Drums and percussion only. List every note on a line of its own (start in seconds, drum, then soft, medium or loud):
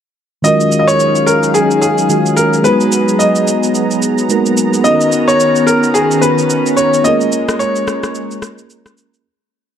0.44 shaker medium
0.60 shaker soft
0.72 shaker medium
0.88 shaker medium
1.00 shaker medium
1.16 shaker medium
1.27 shaker medium
1.43 shaker soft
1.55 shaker medium
1.71 shaker soft
1.82 shaker medium
1.98 shaker medium
2.10 shaker medium
2.26 shaker medium
2.37 shaker medium
2.53 shaker soft
2.65 shaker medium
2.81 shaker soft
2.92 shaker medium
3.08 shaker medium
3.20 shaker medium
3.35 shaker medium
3.48 shaker medium
3.63 shaker medium
3.75 shaker medium
3.91 shaker soft
4.02 shaker medium
4.18 shaker soft
4.30 shaker medium
4.46 shaker medium
4.57 shaker medium
4.73 shaker soft
4.85 shaker medium
5.01 shaker soft
5.12 shaker medium
5.29 shaker medium
5.40 shaker medium
5.56 shaker medium
5.68 shaker medium
5.83 shaker medium
5.95 shaker medium
6.11 shaker soft
6.22 shaker medium
6.38 shaker soft
6.50 shaker medium
6.66 shaker medium
6.77 shaker medium
6.94 shaker soft
7.05 shaker medium
7.21 shaker soft
7.32 shaker medium
7.49 cross-stick medium
7.49 shaker medium
7.60 shaker medium
7.76 shaker medium
7.88 cross-stick medium
7.88 shaker medium
8.03 cross-stick medium
8.03 shaker medium
8.15 shaker medium
8.31 shaker soft
8.42 cross-stick medium
8.42 shaker medium
8.58 shaker medium
8.70 shaker medium
8.86 cross-stick medium
8.86 shaker medium
8.98 shaker medium
9.14 shaker soft